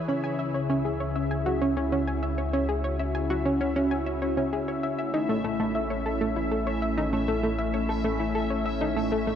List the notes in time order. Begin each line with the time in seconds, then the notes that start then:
Already playing: E4 G#4
0.08 C#2 C#3 C#4 E5
0.24 G#5
0.39 E5
0.54 C#5
0.70 C#4
0.85 G#4
1.00 C#5
1.16 E5
1.31 G#5
1.46 F#4
1.62 C#4
1.77 C#4
1.92 C#4
2.07 G#5
2.23 E5
2.38 C#5
2.53 C#4 F#4
2.69 G#4
2.84 C#5
2.99 E5
3.15 G#5
3.30 F#4
3.45 C#4
3.61 C#4
3.76 C#4
3.91 G#5
4.07 E5
4.22 C#5
4.37 C#4
4.53 G#4
4.68 C#5
4.83 E5
4.98 A1 A3 E5
5.14 D#4
5.29 A3
5.44 A3
5.60 A3
5.75 E5
5.90 C#5
6.06 A4
6.21 A3
6.36 E4
6.52 A4
6.67 C#5
6.82 E5
6.98 D#4
7.13 A3
7.28 A3
7.43 A3
7.59 E5
7.74 C#5
7.89 A4
8.05 A3
8.20 E4
8.35 A4
8.50 C#5
8.66 E5
8.81 D#4
8.96 A3
9.12 A3
9.27 A3